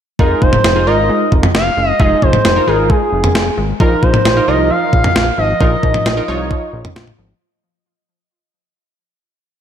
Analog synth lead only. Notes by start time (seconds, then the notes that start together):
0.19 A#4
0.42 C5
0.87 D#5
1.55 F5
1.90 D#5
2.00 D#5
2.22 C5
2.67 A#4
2.90 G#4
3.80 A#4
4.03 C5
4.48 D#5
4.70 F5
5.38 D#5